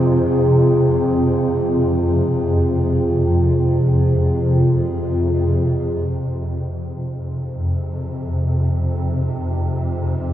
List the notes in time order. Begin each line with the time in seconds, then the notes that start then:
Already playing: F2 C3 C4 F4 G#4
6.11 F2 C3 D#4
7.01 G#4
7.53 F4